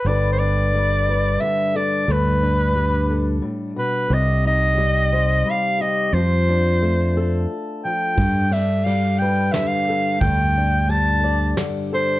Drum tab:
RD |------|------|------|------|
SD |------|------|------|------|
BD |------|------|------|------|

RD |xxx-x-|x-x-x-|
SD |----o-|----o-|
BD |o-----|o-----|